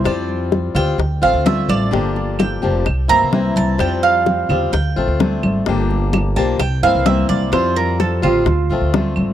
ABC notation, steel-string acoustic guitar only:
X:1
M:4/4
L:1/8
Q:1/4=128
K:F
V:1 name="Steel-string acoustic guitar"
[F,G,CF]3 [G,CF] z [A,CF] [D,A,CF]2 | [D,F,B,DG]3 [F,B,DG] z [E,B,CE] [E,B,CE]2 | [F,G,CF]3 [G,CF] z [A,CF] [D,A,CF]2 | [D,F,B,DG]3 [F,B,DG] z [E,B,CE] [E,B,CE]2 |
[F,G,CF]3 [G,CF] z [A,CF] [D,A,CF]2 |]